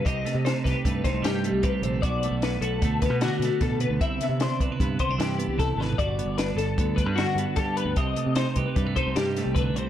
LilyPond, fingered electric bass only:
\new Staff \with { instrumentName = "Fingered electric bass" } { \clef bass \time 5/4 \key c \lydian \tempo 4 = 152 c,8 r16 c8 r16 c,16 r16 g,8 r16 c,16 g,8. c,8. bes,,8 | b,,8. b,,8. b,,8 d,8. b,8 r16 b,16 r16 b,8. d,16 | c,8 r16 c8 r16 c,16 r16 g,8 r16 c,16 g,8. c,8. aes,,8 | g,,8. g,,8. g,,8 d,8. g,8 r16 g,16 r16 g,8. d,16 |
c,8 r16 c8 r16 c,16 r16 g,8 r16 c,16 g,8. c,8. c,8 | }